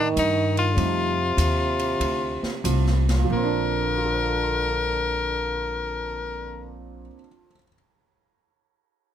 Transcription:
Already playing: upright bass A2, trombone D#3
0.16 upright bass G2, tenor saxophone D#4, kick, hi-hat pedal, ride
0.57 tenor saxophone F4, ride
0.77 upright bass F2, trombone C3, grand piano G3 A3 C4 D#4, kick, ride
1.37 upright bass D#2, kick, hi-hat pedal, ride
1.79 ride
2.00 upright bass D2, kick, ride
2.43 muted upright bass stroke, snare
2.64 upright bass C2, grand piano G3 A3 C4 F4, kick, hi-hat pedal, ride
2.86 snare
3.09 snare, ride
3.19 grand piano A#2
3.24 grand piano F3
3.30 upright bass A#1, trombone D3, grand piano A#3, tenor saxophone A#4
3.37 grand piano C4
3.44 grand piano D4
3.98 grand piano F4
4.05 grand piano A4
4.13 grand piano C5
4.22 grand piano F5
4.33 grand piano A5
4.43 grand piano C6
4.55 grand piano F6

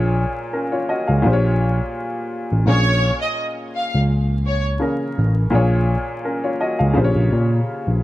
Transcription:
Already playing: tine electric piano A#1, upright piano A#2 A#3 F4 G#4 C#5
0.53 upright piano C#4 A#4
0.72 upright piano F4 C#5
0.89 upright piano F#4 D#5
1.07 tine electric piano C#2, upright piano G#4 F5
1.22 tine electric piano A#1, upright piano A#2 A#3 F4 G4
1.27 upright piano C5
1.33 upright piano C#5
2.52 tine electric piano A1
2.66 tine electric piano A#1, upright piano A#2 A#3 C#4 G#4, violin section C#5
2.70 upright piano C#5
3.22 violin section D#5
3.75 violin section F5
3.94 tine electric piano C#2
4.46 violin section C#5
4.79 upright piano C#3 A#3 C#4 G#4 A#4
5.18 tine electric piano A1
5.50 tine electric piano A#1, upright piano A#2 A#3 F4 G#4
5.55 upright piano C#5
6.25 upright piano C#4 A#4
6.44 upright piano F4 C#5
6.61 upright piano F#4 D#5
6.79 tine electric piano C#2, upright piano G#4 F5
6.93 tine electric piano A#1, upright piano C#3 A#3 F4 G4
6.98 upright piano C5
7.04 upright piano C#5
7.16 tine electric piano A#1
7.32 tine electric piano A#2
7.87 tine electric piano A#1

